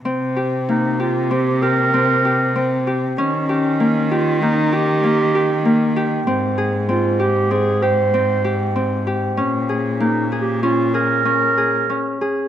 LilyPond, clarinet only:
\new Staff \with { instrumentName = "Clarinet" } { \time 5/4 \key c \phrygian \tempo 4 = 96 r4 ees'8 f'8 g'8 bes'2 r8 | des'4. f'8 ees'8 g'2 r8 | r4 f'8 g'8 aes'8 c''2 r8 | r4 \tuplet 3/2 { ees'8. r16 g'8 } f'8 bes'2 r8 | }